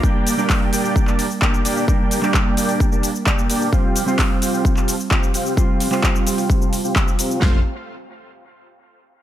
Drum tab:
HH |--o-o-o---o---o-|--o---oo--o---o-|--o-o-o---o---o-|--o---oo--o---o-|
SH |x-xxx-xxxxxxxxxx|x-xxx-xxxxxxxxxx|x-xxx-xxxxxxxxxx|x-xxxxxxxxxxxxxx|
CP |----x----x--x---|---xx-------x---|----x----x--x---|---xx-------x---|
SD |----------------|----------------|----------------|----------------|
BD |o---o---o---o---|o---o---o---o---|o---o---o---o---|o---o---o---o---|

HH |----------------|
SH |----------------|
CP |x---------------|
SD |o---------------|
BD |o---------------|